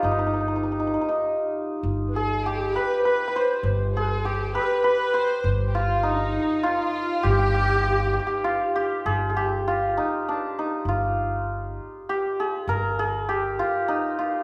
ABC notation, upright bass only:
X:1
M:3/4
L:1/8
Q:1/4=100
K:none
V:1 name="Upright bass" clef=bass
G,,,4 z2 | G,,,4 z2 | G,,,4 z2 | G,,,4 z2 |
G,,,4 z2 | G,,,4 z2 | G,,,4 z2 | G,,,4 z2 |]